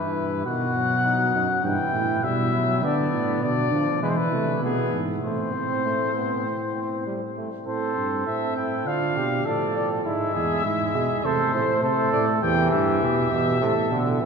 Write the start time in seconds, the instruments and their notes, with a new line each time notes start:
Already playing: tuba G2, trombone E3, flugelhorn E4, trumpet B4
0.45 tuba B2, trombone D#3, flugelhorn F#4, trumpet F#5
0.76 trombone F#3
1.05 flugelhorn D#4
1.34 tuba F#2, flugelhorn D#4
1.64 tuba G2, trombone E3, flugelhorn E4, trumpet G5
1.94 tuba A2
2.23 tuba B2, trombone G3, trumpet E5
2.54 trombone F#3
2.83 tuba D3, trombone B3, flugelhorn D4, trumpet D5
3.12 tuba A2
3.42 tuba B2, flugelhorn D4, trumpet D5
3.71 tuba D3, trombone F3
4.02 tuba E3, trombone G#3, flugelhorn E4, trumpet B4
4.09 trumpet C5
4.17 trumpet B4
4.32 tuba C3, trombone A3
4.61 tuba B2, trombone B3, trumpet G#4
4.92 tuba G#2
5.22 tuba A2, trombone A3, flugelhorn C4, trumpet C5
5.55 trombone C4
5.86 trombone A3
6.16 trombone B3
6.46 trombone C4
6.76 trombone C4
7.07 trombone G3
7.37 trombone A3
7.67 tuba A2, trombone C4, flugelhorn A4, trumpet C5
7.97 tuba G2
8.27 tuba A2, trombone C4, trumpet E5
8.57 flugelhorn E4, trumpet G5
8.86 tuba D3, trombone D4, flugelhorn F4, trumpet F5
9.16 tuba B2, flugelhorn G4
9.45 tuba A2, trombone F3, flugelhorn A4, trumpet D5
9.75 trumpet D5
10.05 tuba G#2, trombone G#3, flugelhorn E4, trumpet E5
10.34 tuba E2, flugelhorn G#4
10.65 tuba G#2, flugelhorn E4
10.95 tuba B2, flugelhorn G#4
11.24 tuba C3, trombone A3, flugelhorn A4, trumpet C5
11.54 tuba A2, flugelhorn C5
11.83 tuba C3, flugelhorn A4, trumpet C5
12.12 tuba A2, trumpet D5
12.42 tuba E2, trombone E3, flugelhorn G4, trumpet G5
12.71 tuba G2, trumpet E5
13.03 tuba B2, flugelhorn G4
13.32 trombone B2, tuba B2
13.61 tuba A2, trombone C3, flugelhorn A4
13.91 tuba B2, trombone D3
14.21 tuba A2, trombone E3, flugelhorn C4